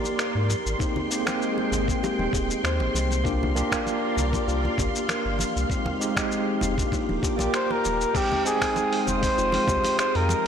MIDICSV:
0, 0, Header, 1, 7, 480
1, 0, Start_track
1, 0, Tempo, 612245
1, 627, Time_signature, 4, 2, 24, 8
1, 8210, End_track
2, 0, Start_track
2, 0, Title_t, "String machine"
2, 0, Program_c, 0, 50
2, 0, Note_on_c, 0, 70, 73
2, 0, Note_on_c, 0, 74, 67
2, 0, Note_on_c, 0, 84, 77
2, 371, Note_off_c, 0, 74, 0
2, 372, Note_off_c, 0, 70, 0
2, 388, Note_on_c, 0, 56, 84
2, 390, Note_on_c, 0, 79, 74
2, 2526, Note_off_c, 0, 56, 0
2, 2527, Note_off_c, 0, 79, 0
2, 2547, Note_on_c, 0, 74, 69
2, 2548, Note_on_c, 0, 77, 72
2, 2549, Note_on_c, 0, 70, 74
2, 4448, Note_off_c, 0, 74, 0
2, 4449, Note_off_c, 0, 70, 0
2, 4467, Note_on_c, 0, 56, 76
2, 5393, Note_off_c, 0, 84, 0
2, 5399, Note_off_c, 0, 77, 0
2, 5418, Note_off_c, 0, 56, 0
2, 5430, Note_on_c, 0, 70, 82
2, 5431, Note_on_c, 0, 79, 72
2, 5432, Note_on_c, 0, 86, 85
2, 6379, Note_off_c, 0, 70, 0
2, 6380, Note_off_c, 0, 79, 0
2, 6380, Note_off_c, 0, 86, 0
2, 6390, Note_on_c, 0, 87, 82
2, 6391, Note_on_c, 0, 56, 77
2, 6392, Note_on_c, 0, 79, 69
2, 6394, Note_on_c, 0, 77, 69
2, 8210, Note_off_c, 0, 56, 0
2, 8210, Note_off_c, 0, 77, 0
2, 8210, Note_off_c, 0, 79, 0
2, 8210, Note_off_c, 0, 87, 0
2, 8210, End_track
3, 0, Start_track
3, 0, Title_t, "Muted trumpet"
3, 0, Program_c, 1, 59
3, 5921, Note_on_c, 1, 72, 104
3, 6048, Note_on_c, 1, 70, 100
3, 6060, Note_off_c, 1, 72, 0
3, 6402, Note_on_c, 1, 67, 99
3, 6414, Note_off_c, 1, 70, 0
3, 6630, Note_off_c, 1, 67, 0
3, 6635, Note_on_c, 1, 68, 107
3, 7080, Note_off_c, 1, 68, 0
3, 7124, Note_on_c, 1, 72, 104
3, 7804, Note_off_c, 1, 72, 0
3, 7839, Note_on_c, 1, 72, 109
3, 7967, Note_on_c, 1, 70, 101
3, 7978, Note_off_c, 1, 72, 0
3, 8210, Note_off_c, 1, 70, 0
3, 8210, End_track
4, 0, Start_track
4, 0, Title_t, "Kalimba"
4, 0, Program_c, 2, 108
4, 0, Note_on_c, 2, 67, 70
4, 126, Note_off_c, 2, 67, 0
4, 150, Note_on_c, 2, 70, 76
4, 377, Note_off_c, 2, 70, 0
4, 631, Note_on_c, 2, 63, 78
4, 766, Note_off_c, 2, 63, 0
4, 1590, Note_on_c, 2, 67, 76
4, 1806, Note_off_c, 2, 67, 0
4, 1827, Note_on_c, 2, 68, 69
4, 2045, Note_off_c, 2, 68, 0
4, 2068, Note_on_c, 2, 72, 73
4, 2297, Note_off_c, 2, 72, 0
4, 2553, Note_on_c, 2, 62, 81
4, 2687, Note_off_c, 2, 62, 0
4, 3511, Note_on_c, 2, 65, 76
4, 3727, Note_off_c, 2, 65, 0
4, 3752, Note_on_c, 2, 67, 69
4, 3967, Note_off_c, 2, 67, 0
4, 3991, Note_on_c, 2, 70, 74
4, 4218, Note_off_c, 2, 70, 0
4, 4472, Note_on_c, 2, 63, 76
4, 4606, Note_off_c, 2, 63, 0
4, 5430, Note_on_c, 2, 63, 82
4, 5646, Note_off_c, 2, 63, 0
4, 5666, Note_on_c, 2, 67, 72
4, 5896, Note_off_c, 2, 67, 0
4, 5908, Note_on_c, 2, 67, 71
4, 6045, Note_off_c, 2, 67, 0
4, 6386, Note_on_c, 2, 63, 79
4, 6523, Note_off_c, 2, 63, 0
4, 7350, Note_on_c, 2, 65, 74
4, 7566, Note_off_c, 2, 65, 0
4, 7590, Note_on_c, 2, 67, 73
4, 7806, Note_off_c, 2, 67, 0
4, 7829, Note_on_c, 2, 68, 77
4, 8057, Note_off_c, 2, 68, 0
4, 8210, End_track
5, 0, Start_track
5, 0, Title_t, "Tine electric piano"
5, 0, Program_c, 3, 4
5, 0, Note_on_c, 3, 58, 74
5, 0, Note_on_c, 3, 63, 67
5, 0, Note_on_c, 3, 67, 81
5, 0, Note_on_c, 3, 74, 67
5, 364, Note_off_c, 3, 58, 0
5, 370, Note_off_c, 3, 74, 0
5, 375, Note_off_c, 3, 63, 0
5, 381, Note_off_c, 3, 67, 0
5, 614, Note_on_c, 3, 58, 68
5, 622, Note_on_c, 3, 60, 56
5, 626, Note_on_c, 3, 63, 59
5, 634, Note_on_c, 3, 67, 72
5, 834, Note_off_c, 3, 58, 0
5, 838, Note_off_c, 3, 60, 0
5, 840, Note_off_c, 3, 63, 0
5, 844, Note_off_c, 3, 67, 0
5, 862, Note_on_c, 3, 58, 75
5, 869, Note_on_c, 3, 60, 71
5, 877, Note_on_c, 3, 63, 70
5, 881, Note_on_c, 3, 67, 88
5, 962, Note_off_c, 3, 58, 0
5, 965, Note_off_c, 3, 60, 0
5, 969, Note_off_c, 3, 63, 0
5, 971, Note_off_c, 3, 67, 0
5, 982, Note_on_c, 3, 58, 86
5, 990, Note_on_c, 3, 60, 83
5, 993, Note_on_c, 3, 63, 80
5, 1002, Note_on_c, 3, 67, 99
5, 1438, Note_off_c, 3, 58, 0
5, 1442, Note_off_c, 3, 60, 0
5, 1444, Note_off_c, 3, 63, 0
5, 1448, Note_off_c, 3, 67, 0
5, 1459, Note_on_c, 3, 58, 71
5, 1472, Note_on_c, 3, 60, 68
5, 1484, Note_on_c, 3, 63, 64
5, 1497, Note_on_c, 3, 79, 81
5, 2512, Note_off_c, 3, 58, 0
5, 2519, Note_off_c, 3, 60, 0
5, 2525, Note_off_c, 3, 63, 0
5, 2531, Note_off_c, 3, 79, 0
5, 2536, Note_on_c, 3, 58, 92
5, 2543, Note_on_c, 3, 62, 84
5, 2548, Note_on_c, 3, 65, 82
5, 2555, Note_on_c, 3, 67, 97
5, 2755, Note_off_c, 3, 58, 0
5, 2758, Note_off_c, 3, 62, 0
5, 2761, Note_off_c, 3, 65, 0
5, 2764, Note_off_c, 3, 67, 0
5, 2783, Note_on_c, 3, 58, 95
5, 2787, Note_on_c, 3, 62, 87
5, 2795, Note_on_c, 3, 65, 85
5, 2800, Note_on_c, 3, 67, 108
5, 2894, Note_off_c, 3, 58, 0
5, 2896, Note_off_c, 3, 62, 0
5, 2900, Note_off_c, 3, 65, 0
5, 2902, Note_off_c, 3, 67, 0
5, 2911, Note_on_c, 3, 58, 92
5, 2916, Note_on_c, 3, 62, 85
5, 2922, Note_on_c, 3, 65, 81
5, 2929, Note_on_c, 3, 67, 99
5, 3362, Note_off_c, 3, 58, 0
5, 3365, Note_off_c, 3, 62, 0
5, 3368, Note_off_c, 3, 65, 0
5, 3371, Note_off_c, 3, 67, 0
5, 3379, Note_on_c, 3, 58, 75
5, 3391, Note_on_c, 3, 62, 72
5, 3403, Note_on_c, 3, 65, 72
5, 3415, Note_on_c, 3, 67, 87
5, 4433, Note_off_c, 3, 58, 0
5, 4438, Note_off_c, 3, 62, 0
5, 4444, Note_off_c, 3, 65, 0
5, 4450, Note_off_c, 3, 67, 0
5, 4455, Note_on_c, 3, 56, 67
5, 4463, Note_on_c, 3, 60, 62
5, 4469, Note_on_c, 3, 63, 62
5, 4472, Note_on_c, 3, 67, 70
5, 4674, Note_off_c, 3, 56, 0
5, 4678, Note_off_c, 3, 60, 0
5, 4681, Note_off_c, 3, 63, 0
5, 4683, Note_off_c, 3, 67, 0
5, 4696, Note_on_c, 3, 56, 79
5, 4702, Note_on_c, 3, 60, 72
5, 4707, Note_on_c, 3, 63, 76
5, 4712, Note_on_c, 3, 67, 88
5, 4799, Note_off_c, 3, 56, 0
5, 4802, Note_off_c, 3, 60, 0
5, 4804, Note_off_c, 3, 63, 0
5, 4807, Note_off_c, 3, 67, 0
5, 4824, Note_on_c, 3, 56, 95
5, 4830, Note_on_c, 3, 60, 84
5, 4837, Note_on_c, 3, 63, 88
5, 4842, Note_on_c, 3, 67, 106
5, 5279, Note_off_c, 3, 56, 0
5, 5282, Note_off_c, 3, 60, 0
5, 5286, Note_off_c, 3, 63, 0
5, 5288, Note_off_c, 3, 67, 0
5, 5310, Note_on_c, 3, 58, 73
5, 5312, Note_on_c, 3, 62, 65
5, 5322, Note_on_c, 3, 65, 69
5, 5324, Note_on_c, 3, 67, 85
5, 5642, Note_off_c, 3, 58, 0
5, 5643, Note_off_c, 3, 62, 0
5, 5648, Note_off_c, 3, 65, 0
5, 5649, Note_off_c, 3, 67, 0
5, 5660, Note_on_c, 3, 58, 74
5, 5665, Note_on_c, 3, 62, 69
5, 5672, Note_on_c, 3, 65, 67
5, 5675, Note_on_c, 3, 67, 79
5, 5761, Note_off_c, 3, 58, 0
5, 5763, Note_off_c, 3, 62, 0
5, 5767, Note_off_c, 3, 65, 0
5, 5768, Note_off_c, 3, 67, 0
5, 5774, Note_on_c, 3, 58, 90
5, 5786, Note_on_c, 3, 74, 86
5, 5798, Note_on_c, 3, 65, 87
5, 5808, Note_on_c, 3, 67, 104
5, 6350, Note_off_c, 3, 58, 0
5, 6356, Note_off_c, 3, 74, 0
5, 6362, Note_off_c, 3, 65, 0
5, 6367, Note_off_c, 3, 67, 0
5, 6378, Note_on_c, 3, 56, 89
5, 6383, Note_on_c, 3, 60, 80
5, 6388, Note_on_c, 3, 63, 82
5, 6396, Note_on_c, 3, 67, 94
5, 6596, Note_off_c, 3, 56, 0
5, 6598, Note_off_c, 3, 60, 0
5, 6601, Note_off_c, 3, 63, 0
5, 6605, Note_off_c, 3, 67, 0
5, 6621, Note_on_c, 3, 56, 94
5, 6624, Note_on_c, 3, 60, 88
5, 6630, Note_on_c, 3, 63, 90
5, 6636, Note_on_c, 3, 67, 110
5, 6733, Note_off_c, 3, 56, 0
5, 6734, Note_off_c, 3, 60, 0
5, 6737, Note_off_c, 3, 63, 0
5, 6740, Note_off_c, 3, 67, 0
5, 6747, Note_on_c, 3, 56, 98
5, 6754, Note_on_c, 3, 60, 85
5, 6763, Note_on_c, 3, 63, 89
5, 6769, Note_on_c, 3, 79, 105
5, 7200, Note_off_c, 3, 56, 0
5, 7204, Note_off_c, 3, 60, 0
5, 7208, Note_off_c, 3, 63, 0
5, 7211, Note_off_c, 3, 79, 0
5, 7221, Note_on_c, 3, 56, 74
5, 7230, Note_on_c, 3, 60, 72
5, 7244, Note_on_c, 3, 63, 73
5, 7256, Note_on_c, 3, 79, 88
5, 8210, Note_off_c, 3, 56, 0
5, 8210, Note_off_c, 3, 60, 0
5, 8210, Note_off_c, 3, 63, 0
5, 8210, Note_off_c, 3, 79, 0
5, 8210, End_track
6, 0, Start_track
6, 0, Title_t, "Sub bass"
6, 0, Program_c, 4, 38
6, 274, Note_on_c, 4, 44, 80
6, 426, Note_off_c, 4, 44, 0
6, 515, Note_on_c, 4, 32, 77
6, 589, Note_off_c, 4, 32, 0
6, 1344, Note_on_c, 4, 32, 103
6, 1508, Note_off_c, 4, 32, 0
6, 1711, Note_on_c, 4, 27, 97
6, 1786, Note_off_c, 4, 27, 0
6, 1826, Note_on_c, 4, 27, 94
6, 1989, Note_off_c, 4, 27, 0
6, 2066, Note_on_c, 4, 39, 88
6, 2196, Note_on_c, 4, 32, 94
6, 2208, Note_off_c, 4, 39, 0
6, 2269, Note_off_c, 4, 32, 0
6, 2307, Note_on_c, 4, 36, 88
6, 2844, Note_off_c, 4, 36, 0
6, 3266, Note_on_c, 4, 36, 101
6, 3429, Note_off_c, 4, 36, 0
6, 3507, Note_on_c, 4, 36, 88
6, 3669, Note_off_c, 4, 36, 0
6, 3747, Note_on_c, 4, 31, 92
6, 3831, Note_off_c, 4, 31, 0
6, 4116, Note_on_c, 4, 31, 78
6, 4267, Note_off_c, 4, 31, 0
6, 4359, Note_on_c, 4, 36, 80
6, 4431, Note_off_c, 4, 36, 0
6, 5190, Note_on_c, 4, 29, 104
6, 5351, Note_off_c, 4, 29, 0
6, 5558, Note_on_c, 4, 27, 91
6, 5630, Note_off_c, 4, 27, 0
6, 5799, Note_on_c, 4, 34, 91
6, 5870, Note_off_c, 4, 34, 0
6, 6156, Note_on_c, 4, 27, 103
6, 6314, Note_off_c, 4, 27, 0
6, 7112, Note_on_c, 4, 29, 100
6, 7272, Note_off_c, 4, 29, 0
6, 7352, Note_on_c, 4, 29, 86
6, 7512, Note_off_c, 4, 29, 0
6, 7586, Note_on_c, 4, 36, 103
6, 7670, Note_off_c, 4, 36, 0
6, 7957, Note_on_c, 4, 41, 80
6, 8108, Note_off_c, 4, 41, 0
6, 8210, End_track
7, 0, Start_track
7, 0, Title_t, "Drums"
7, 32, Note_on_c, 9, 62, 43
7, 41, Note_on_c, 9, 69, 41
7, 110, Note_off_c, 9, 62, 0
7, 120, Note_off_c, 9, 69, 0
7, 149, Note_on_c, 9, 26, 67
7, 155, Note_on_c, 9, 69, 32
7, 227, Note_off_c, 9, 26, 0
7, 233, Note_off_c, 9, 69, 0
7, 390, Note_on_c, 9, 62, 65
7, 393, Note_on_c, 9, 63, 62
7, 393, Note_on_c, 9, 69, 69
7, 469, Note_off_c, 9, 62, 0
7, 471, Note_off_c, 9, 63, 0
7, 472, Note_off_c, 9, 69, 0
7, 523, Note_on_c, 9, 69, 42
7, 601, Note_off_c, 9, 69, 0
7, 622, Note_on_c, 9, 62, 43
7, 628, Note_on_c, 9, 36, 102
7, 635, Note_on_c, 9, 69, 30
7, 701, Note_off_c, 9, 62, 0
7, 706, Note_off_c, 9, 36, 0
7, 713, Note_off_c, 9, 69, 0
7, 753, Note_on_c, 9, 64, 71
7, 831, Note_off_c, 9, 64, 0
7, 874, Note_on_c, 9, 69, 75
7, 952, Note_off_c, 9, 69, 0
7, 994, Note_on_c, 9, 26, 71
7, 1000, Note_on_c, 9, 69, 41
7, 1004, Note_on_c, 9, 62, 78
7, 1073, Note_off_c, 9, 26, 0
7, 1079, Note_off_c, 9, 69, 0
7, 1083, Note_off_c, 9, 62, 0
7, 1114, Note_on_c, 9, 69, 30
7, 1192, Note_off_c, 9, 69, 0
7, 1237, Note_on_c, 9, 62, 49
7, 1315, Note_off_c, 9, 62, 0
7, 1354, Note_on_c, 9, 64, 72
7, 1354, Note_on_c, 9, 69, 75
7, 1433, Note_off_c, 9, 64, 0
7, 1433, Note_off_c, 9, 69, 0
7, 1474, Note_on_c, 9, 36, 101
7, 1485, Note_on_c, 9, 69, 42
7, 1552, Note_off_c, 9, 36, 0
7, 1563, Note_off_c, 9, 69, 0
7, 1598, Note_on_c, 9, 62, 82
7, 1599, Note_on_c, 9, 69, 30
7, 1677, Note_off_c, 9, 62, 0
7, 1677, Note_off_c, 9, 69, 0
7, 1719, Note_on_c, 9, 63, 83
7, 1797, Note_off_c, 9, 63, 0
7, 1827, Note_on_c, 9, 36, 92
7, 1834, Note_on_c, 9, 62, 46
7, 1839, Note_on_c, 9, 69, 66
7, 1905, Note_off_c, 9, 36, 0
7, 1913, Note_off_c, 9, 62, 0
7, 1917, Note_off_c, 9, 69, 0
7, 1966, Note_on_c, 9, 69, 41
7, 2044, Note_off_c, 9, 69, 0
7, 2075, Note_on_c, 9, 26, 71
7, 2081, Note_on_c, 9, 69, 31
7, 2153, Note_off_c, 9, 26, 0
7, 2159, Note_off_c, 9, 69, 0
7, 2196, Note_on_c, 9, 62, 71
7, 2275, Note_off_c, 9, 62, 0
7, 2309, Note_on_c, 9, 63, 58
7, 2319, Note_on_c, 9, 69, 68
7, 2387, Note_off_c, 9, 63, 0
7, 2398, Note_off_c, 9, 69, 0
7, 2436, Note_on_c, 9, 62, 45
7, 2445, Note_on_c, 9, 69, 41
7, 2514, Note_off_c, 9, 62, 0
7, 2524, Note_off_c, 9, 69, 0
7, 2547, Note_on_c, 9, 36, 103
7, 2557, Note_on_c, 9, 69, 30
7, 2625, Note_off_c, 9, 36, 0
7, 2635, Note_off_c, 9, 69, 0
7, 2689, Note_on_c, 9, 64, 79
7, 2767, Note_off_c, 9, 64, 0
7, 2792, Note_on_c, 9, 62, 68
7, 2797, Note_on_c, 9, 69, 68
7, 2870, Note_off_c, 9, 62, 0
7, 2876, Note_off_c, 9, 69, 0
7, 2915, Note_on_c, 9, 36, 57
7, 2920, Note_on_c, 9, 26, 72
7, 2926, Note_on_c, 9, 69, 39
7, 2994, Note_off_c, 9, 36, 0
7, 2998, Note_off_c, 9, 26, 0
7, 3004, Note_off_c, 9, 69, 0
7, 3031, Note_on_c, 9, 62, 55
7, 3037, Note_on_c, 9, 69, 31
7, 3110, Note_off_c, 9, 62, 0
7, 3115, Note_off_c, 9, 69, 0
7, 3278, Note_on_c, 9, 69, 72
7, 3284, Note_on_c, 9, 64, 68
7, 3356, Note_off_c, 9, 69, 0
7, 3362, Note_off_c, 9, 64, 0
7, 3395, Note_on_c, 9, 36, 95
7, 3401, Note_on_c, 9, 62, 79
7, 3406, Note_on_c, 9, 69, 41
7, 3474, Note_off_c, 9, 36, 0
7, 3479, Note_off_c, 9, 62, 0
7, 3484, Note_off_c, 9, 69, 0
7, 3518, Note_on_c, 9, 69, 29
7, 3596, Note_off_c, 9, 69, 0
7, 3644, Note_on_c, 9, 63, 78
7, 3647, Note_on_c, 9, 62, 46
7, 3723, Note_off_c, 9, 63, 0
7, 3725, Note_off_c, 9, 62, 0
7, 3748, Note_on_c, 9, 36, 96
7, 3754, Note_on_c, 9, 64, 100
7, 3757, Note_on_c, 9, 69, 70
7, 3826, Note_off_c, 9, 36, 0
7, 3833, Note_off_c, 9, 64, 0
7, 3835, Note_off_c, 9, 69, 0
7, 3886, Note_on_c, 9, 69, 41
7, 3964, Note_off_c, 9, 69, 0
7, 3989, Note_on_c, 9, 62, 76
7, 3991, Note_on_c, 9, 26, 72
7, 3997, Note_on_c, 9, 69, 32
7, 4067, Note_off_c, 9, 62, 0
7, 4070, Note_off_c, 9, 26, 0
7, 4076, Note_off_c, 9, 69, 0
7, 4224, Note_on_c, 9, 62, 45
7, 4229, Note_on_c, 9, 63, 60
7, 4239, Note_on_c, 9, 69, 71
7, 4303, Note_off_c, 9, 62, 0
7, 4307, Note_off_c, 9, 63, 0
7, 4317, Note_off_c, 9, 69, 0
7, 4367, Note_on_c, 9, 69, 42
7, 4445, Note_off_c, 9, 69, 0
7, 4466, Note_on_c, 9, 36, 97
7, 4478, Note_on_c, 9, 69, 32
7, 4545, Note_off_c, 9, 36, 0
7, 4556, Note_off_c, 9, 69, 0
7, 4591, Note_on_c, 9, 64, 75
7, 4592, Note_on_c, 9, 62, 81
7, 4670, Note_off_c, 9, 62, 0
7, 4670, Note_off_c, 9, 64, 0
7, 4717, Note_on_c, 9, 69, 72
7, 4795, Note_off_c, 9, 69, 0
7, 4834, Note_on_c, 9, 36, 60
7, 4835, Note_on_c, 9, 62, 58
7, 4838, Note_on_c, 9, 26, 76
7, 4844, Note_on_c, 9, 69, 40
7, 4912, Note_off_c, 9, 36, 0
7, 4914, Note_off_c, 9, 62, 0
7, 4917, Note_off_c, 9, 26, 0
7, 4923, Note_off_c, 9, 69, 0
7, 4953, Note_on_c, 9, 69, 32
7, 5031, Note_off_c, 9, 69, 0
7, 5184, Note_on_c, 9, 62, 80
7, 5185, Note_on_c, 9, 64, 75
7, 5196, Note_on_c, 9, 69, 74
7, 5263, Note_off_c, 9, 62, 0
7, 5263, Note_off_c, 9, 64, 0
7, 5274, Note_off_c, 9, 69, 0
7, 5314, Note_on_c, 9, 36, 104
7, 5324, Note_on_c, 9, 69, 44
7, 5393, Note_off_c, 9, 36, 0
7, 5402, Note_off_c, 9, 69, 0
7, 5426, Note_on_c, 9, 36, 61
7, 5432, Note_on_c, 9, 62, 57
7, 5437, Note_on_c, 9, 69, 31
7, 5504, Note_off_c, 9, 36, 0
7, 5511, Note_off_c, 9, 62, 0
7, 5515, Note_off_c, 9, 69, 0
7, 5559, Note_on_c, 9, 63, 76
7, 5638, Note_off_c, 9, 63, 0
7, 5667, Note_on_c, 9, 36, 97
7, 5676, Note_on_c, 9, 69, 75
7, 5745, Note_off_c, 9, 36, 0
7, 5754, Note_off_c, 9, 69, 0
7, 5793, Note_on_c, 9, 62, 78
7, 5803, Note_on_c, 9, 69, 41
7, 5871, Note_off_c, 9, 62, 0
7, 5881, Note_off_c, 9, 69, 0
7, 5909, Note_on_c, 9, 26, 74
7, 5915, Note_on_c, 9, 69, 32
7, 5988, Note_off_c, 9, 26, 0
7, 5994, Note_off_c, 9, 69, 0
7, 6041, Note_on_c, 9, 62, 54
7, 6119, Note_off_c, 9, 62, 0
7, 6152, Note_on_c, 9, 69, 72
7, 6162, Note_on_c, 9, 63, 55
7, 6231, Note_off_c, 9, 69, 0
7, 6240, Note_off_c, 9, 63, 0
7, 6280, Note_on_c, 9, 69, 42
7, 6359, Note_off_c, 9, 69, 0
7, 6387, Note_on_c, 9, 36, 110
7, 6388, Note_on_c, 9, 49, 101
7, 6394, Note_on_c, 9, 69, 33
7, 6465, Note_off_c, 9, 36, 0
7, 6467, Note_off_c, 9, 49, 0
7, 6473, Note_off_c, 9, 69, 0
7, 6521, Note_on_c, 9, 64, 80
7, 6523, Note_on_c, 9, 62, 46
7, 6599, Note_off_c, 9, 64, 0
7, 6601, Note_off_c, 9, 62, 0
7, 6634, Note_on_c, 9, 69, 72
7, 6713, Note_off_c, 9, 69, 0
7, 6754, Note_on_c, 9, 36, 59
7, 6756, Note_on_c, 9, 26, 77
7, 6756, Note_on_c, 9, 46, 57
7, 6762, Note_on_c, 9, 69, 43
7, 6833, Note_off_c, 9, 36, 0
7, 6834, Note_off_c, 9, 26, 0
7, 6834, Note_off_c, 9, 46, 0
7, 6840, Note_off_c, 9, 69, 0
7, 6868, Note_on_c, 9, 62, 83
7, 6873, Note_on_c, 9, 69, 32
7, 6947, Note_off_c, 9, 62, 0
7, 6951, Note_off_c, 9, 69, 0
7, 6998, Note_on_c, 9, 46, 47
7, 7076, Note_off_c, 9, 46, 0
7, 7111, Note_on_c, 9, 62, 54
7, 7112, Note_on_c, 9, 64, 70
7, 7116, Note_on_c, 9, 69, 74
7, 7189, Note_off_c, 9, 62, 0
7, 7191, Note_off_c, 9, 64, 0
7, 7195, Note_off_c, 9, 69, 0
7, 7234, Note_on_c, 9, 46, 56
7, 7235, Note_on_c, 9, 36, 99
7, 7241, Note_on_c, 9, 69, 47
7, 7313, Note_off_c, 9, 36, 0
7, 7313, Note_off_c, 9, 46, 0
7, 7319, Note_off_c, 9, 69, 0
7, 7356, Note_on_c, 9, 69, 33
7, 7434, Note_off_c, 9, 69, 0
7, 7467, Note_on_c, 9, 62, 79
7, 7472, Note_on_c, 9, 63, 79
7, 7477, Note_on_c, 9, 46, 47
7, 7545, Note_off_c, 9, 62, 0
7, 7551, Note_off_c, 9, 63, 0
7, 7556, Note_off_c, 9, 46, 0
7, 7586, Note_on_c, 9, 36, 103
7, 7586, Note_on_c, 9, 64, 95
7, 7594, Note_on_c, 9, 69, 76
7, 7664, Note_off_c, 9, 36, 0
7, 7665, Note_off_c, 9, 64, 0
7, 7673, Note_off_c, 9, 69, 0
7, 7712, Note_on_c, 9, 62, 63
7, 7718, Note_on_c, 9, 46, 52
7, 7724, Note_on_c, 9, 69, 44
7, 7790, Note_off_c, 9, 62, 0
7, 7797, Note_off_c, 9, 46, 0
7, 7803, Note_off_c, 9, 69, 0
7, 7831, Note_on_c, 9, 26, 85
7, 7837, Note_on_c, 9, 69, 35
7, 7909, Note_off_c, 9, 26, 0
7, 7915, Note_off_c, 9, 69, 0
7, 7958, Note_on_c, 9, 46, 28
7, 8036, Note_off_c, 9, 46, 0
7, 8068, Note_on_c, 9, 62, 78
7, 8072, Note_on_c, 9, 63, 66
7, 8076, Note_on_c, 9, 69, 77
7, 8146, Note_off_c, 9, 62, 0
7, 8150, Note_off_c, 9, 63, 0
7, 8154, Note_off_c, 9, 69, 0
7, 8210, End_track
0, 0, End_of_file